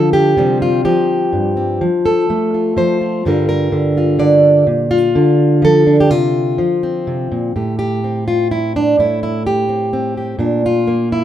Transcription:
Already playing: D3 F3 F4 A4
0.13 G4
0.37 C3 F3 G3 C4
0.62 F4
0.85 F3 G4
1.33 G2
1.57 C4
1.81 F3
2.06 A4
2.30 A3
2.54 F4
2.77 F3 C5
3.01 F4
3.25 G2 D3 G3 F4 A#4
3.49 A#4
3.72 D3
3.97 F4
4.19 D3 D5
4.67 A#2
4.91 F4
5.15 D3
5.62 F3 A4
5.87 D4
6.00 G4
6.11 C3 F4
6.58 F3
6.83 C4
7.07 C3
7.32 A#2
7.56 A2 G4
7.79 G4
8.04 C4
8.28 F4
8.51 E4
8.76 D4
8.99 A2 E4
9.23 E4
9.47 G4
9.69 C4
9.93 C4
10.17 G4
10.39 A#2 D4
10.66 F4
10.87 A#3
11.12 E4

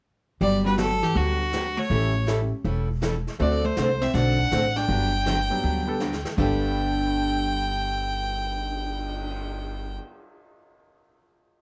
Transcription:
0.40 G1 D3 F#3 G3 B3 D4 G4 D5, brush sweep
0.64 G3 B3 D4 F#4 B4
0.78 D3 F#3 B3 D4 G4 A4, snare, hi-hat pedal
1.02 E3 G4, snare
1.14 D2 D3 F#3 G3 B3 D4 F#4 G4, brush sweep
1.53 D3 F#3 B3 D4 G4, snare, hi-hat pedal
1.77 A3 C#5
1.90 A1 E3 G3 A3 C#4 E4 G4 A4, brush sweep
2.27 E3 G3 A3 C#4 E4 G4 A4, snare, hi-hat pedal
2.65 E1 E3 G3 C#4 E4 A4, brush sweep
3.02 E3 G3 C#4 E4 A4, snare, hi-hat pedal
3.27 snare
3.39 D2 D3 A3 C4 D4 F#4 A4 D5, brush sweep
3.64 A3 C5
3.77 C2 D3 A3 C4 F#4 A4, snare, hi-hat pedal
4.02 C4 E5, snare
4.14 B1 D3 A3 C4 D4 F#4 A4 F#5, brush sweep, snare
4.39 kick
4.51 A1 D3 A3 C4 F#4 A4, snare, hi-hat pedal
4.76 D4 G5, snare
4.88 G1 D3 F#3 G3 B3 D4 F#4 G4, brush sweep
5.26 D3 F#3 B3 D4 G4, snare, hi-hat pedal
5.50 F#3 G3 B3 D4
5.63 D2 D3 F#3 B3 D4 G4, brush sweep
5.87 G3 B3 D4 A4
6.00 D3 F#3 B3 D4 G4, snare, hi-hat pedal
6.13 snare
6.25 snare
6.36 G1 G2 D3 G3 B3 D4 G4 A4 G5, kick, crash
6.63 cymbal swell

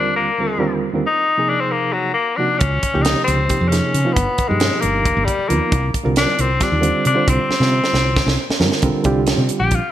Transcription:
Already playing: D#2 D3 G3 C4 D4 F4 A#4
0.16 A#3
0.39 D#2 D3 G3 C4 F4 A#4
0.59 D#2 D3 G3 C4 F4 A#4
0.93 D#2 D3 G3 C4 F4 A#4
1.07 D#4
1.38 C3 F3 A#3 D#4 G#4
1.49 D4
1.60 C4
1.71 A#3
1.93 F#3
2.14 A#3
2.36 C3 F3 A#3 D4 D#4 F#4
2.58 C#2 C#4, kick, closed hi-hat
2.83 kick, closed hi-hat
2.93 C#2 C3 F3 A#3 D#4 G4
3.02 D#4, snare, closed hi-hat
3.24 C#2 C4, closed hi-hat
3.48 C3 F3 A#3 D#4 G4, kick, closed hi-hat
3.61 F2
3.68 C3 F3 A#3 C#4 D#4, closed hi-hat
3.73 G#4, snare
3.94 C#3, closed hi-hat
4.05 C3 F3 A#3 D#4 F4
4.13 G1 B3, kick, closed hi-hat
4.38 muted fretless electric bass stroke, kick, closed hi-hat
4.48 G2 B2 F3 G#3 A#3 D#4 G4
4.60 snare, closed hi-hat
4.81 G1 A#3, closed hi-hat
5.05 kick, closed hi-hat
5.17 G1
5.25 G3, kick, closed hi-hat
5.39 muted fretless electric bass stroke
5.48 D#2 F3 A#3 B3 D#4 F4, closed hi-hat
5.72 C2, kick, closed hi-hat
5.94 kick, closed hi-hat
6.03 C2 D3 G3 C4 F4 A#4
6.16 D4, snare, closed hi-hat
6.39 C2 C4, closed hi-hat
6.59 D3 G3 C4 D4 F4 G4, kick, snare, closed hi-hat
6.72 D#2
6.81 D3 G3 C4 F4 C5, closed hi-hat
7.05 C3 D4, closed hi-hat
7.14 D3 G3 C4 F4 C5
7.28 C2 C4, kick, closed hi-hat
7.49 muted fretless electric bass stroke, snare
7.60 C3 D3 G3 C4 F4 C5, snare
7.84 snare
7.93 C2, snare
8.16 kick, snare
8.27 C2, snare
8.50 muted fretless electric bass stroke, snare
8.60 G2 D3 G3 C4 F4 A#4, snare
8.72 snare
8.82 C2 D3 G3 C4 F4 A#4, kick, closed hi-hat
9.04 C2 D3 G3 C4 F4 G4, kick, closed hi-hat
9.27 snare, closed hi-hat
9.38 C3
9.49 muted fretless electric bass stroke, closed hi-hat
9.60 A#1 G4
9.71 kick, closed hi-hat
9.75 F4

